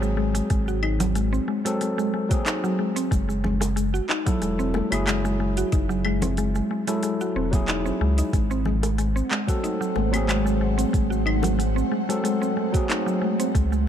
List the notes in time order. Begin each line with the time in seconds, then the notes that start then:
Already playing: G#1 F#3 C4 G#4
0.02 G#3, shaker
0.17 G#3
0.35 G#3, open hi-hat, shaker
0.50 G#1 G#3, kick, open hi-hat, shaker
0.68 F#4, shaker
0.83 D#4, claves
1.00 F#3, open hi-hat, high bongo, low conga, shaker
1.15 G#3, open hi-hat, shaker
1.33 C4, shaker
1.48 G#3
1.65 F#3 G#3 C4 A4, open hi-hat, shaker
1.81 G#3, open hi-hat, shaker
1.98 G#3, shaker
2.14 G#3
2.29 F#3 C4 F#4, kick, open hi-hat, high conga, shaker
2.33 G#4
2.46 D#4, clap, open hi-hat, shaker
2.64 F#3, shaker
2.79 G#3
2.96 C4, open hi-hat, shaker
3.11 F#1 G#3, kick, open hi-hat, shaker
3.29 G#3, shaker
3.44 G#3, low conga
3.61 G#3, open hi-hat, high bongo, shaker
3.76 G#3, open hi-hat, shaker
3.94 F#4, shaker
4.09 D#4, clap
4.26 F#3 E4 A4, kick, open hi-hat, high conga, shaker
4.42 E1 G#3, open hi-hat, shaker
4.59 C4, shaker
4.74 G#3, high bongo, high conga
4.90 F#1 F#3 G#3 E4 G#4, open hi-hat, high conga, claves, shaker
5.07 G#3, clap, open hi-hat, claves, shaker
5.25 G#3, shaker
5.40 G#3
5.57 F#4, open hi-hat, shaker
5.72 F#1 D#4, kick, open hi-hat, shaker
5.89 F#3, shaker
6.05 G#3, claves
6.22 C4, open hi-hat, high bongo, low conga, shaker
6.37 G#3, open hi-hat, shaker
6.55 G#3, shaker
6.71 G#3
6.87 F#3 G#3 E4 A4, open hi-hat, shaker
7.03 G#3, open hi-hat, shaker
7.21 F#4, shaker
7.35 E1 C4
7.51 F#3 E4, kick, open hi-hat, high conga, shaker
7.55 G#4
7.68 D#4, clap, open hi-hat, shaker
7.86 C4, shaker
8.01 C#2 G#3
8.18 D#4, open hi-hat, shaker
8.33 G#1 G#3 A3 C5 F#5, kick, open hi-hat, shaker
8.51 C4, shaker
8.65 G#3, low conga
8.83 G#3, open hi-hat, high bongo, shaker
8.98 G#3, open hi-hat, shaker
9.16 C4, shaker
9.31 G#3, clap
9.47 F#3 C4 F#4 A4, kick, open hi-hat, high conga, shaker
9.64 D#4, open hi-hat, shaker
9.81 F#3, shaker
9.96 G#1 G#3, high bongo, high conga
10.12 F#3 C4 G#4, open hi-hat, high conga, claves, shaker
10.28 G#3, clap, open hi-hat, claves, shaker
10.46 G#3, shaker
10.61 G#3
10.78 C4, open hi-hat, shaker
10.93 G#1 G#3, kick, open hi-hat, shaker
11.11 F#4, shaker
11.26 D#4, claves
11.43 F#3, open hi-hat, high bongo, low conga, shaker
11.59 G#3, open hi-hat, shaker
11.76 C4, shaker
11.92 G#3
12.09 F#3 G#3 C4 A4, open hi-hat, shaker
12.24 G#3, open hi-hat, shaker
12.42 C4, shaker
12.57 G#3
12.72 F#3 C4 F#4, kick, open hi-hat, high conga, shaker
12.77 G#4
12.89 D#4, clap, open hi-hat, shaker
13.06 F#3, shaker
13.22 G#3
13.39 C4, open hi-hat, shaker
13.54 C#2 E3 G#3 C#5 D#5, kick, open hi-hat, shaker
13.72 G#3, shaker